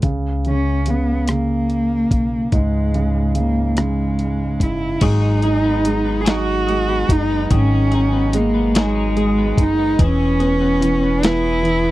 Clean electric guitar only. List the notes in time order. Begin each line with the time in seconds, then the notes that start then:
5.02 F#3 G#4
5.22 D#4
5.43 G#4
5.64 B3
5.85 D#4
6.05 B3
6.25 F#3 G#4
6.46 D#4
6.67 G#4
6.88 B3
7.09 D#4
7.30 B3
7.51 F#3 G#4
7.71 D#4
7.91 G#4
8.12 B3
8.33 D#4
8.54 B3
8.75 F#3 G#4
8.95 D#4
9.17 G#4
9.38 B3
9.58 D#4
9.78 B3
9.99 E3 G#4
10.20 C#4
10.40 G#4
10.61 B3
10.82 C#4
11.03 B3
11.23 E3 G#4
11.43 C#4
11.64 G#4
11.84 B3